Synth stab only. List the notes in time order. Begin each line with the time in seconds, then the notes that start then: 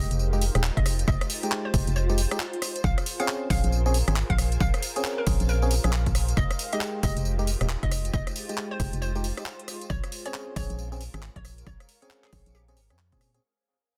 Already playing: G#3 D#4 G4
0.33 G#3 D#4 G4
0.55 G#3 D#4 G4
1.43 G#3 D#4 G4
1.74 G#3 D#4 G4
2.09 G#3 D#4 G4
2.32 G#3 D#4 G4
3.20 C4 C#4 G#4
3.50 C4 C#4 G#4
3.86 C4 C#4 G#4
4.08 C4 C#4 G#4
4.96 C4 C#4 G#4
5.27 C4 C#4 G#4
5.63 C4 C#4 G#4
5.84 C4 C#4 G#4
6.73 G#3 D#4 G4
7.03 G#3 D#4 G4
7.39 G#3 D#4 G4
7.61 G#3 D#4 G4
8.49 G#3 D#4 G4
8.80 G#3 D#4 G4
9.15 G#3 D#4 G4
9.37 G#3 D#4 G4
10.26 C4 C#4 G#4
10.56 C4 C#4 G#4
10.92 C4 C#4 G#4
11.14 C4 C#4 G#4
12.02 C4 C#4 G#4
12.33 C4 C#4 G#4
12.68 C4 C#4 G#4
12.90 C4 C#4 G#4
13.12 C4 C#4 G#4
13.34 C4 C#4 G#4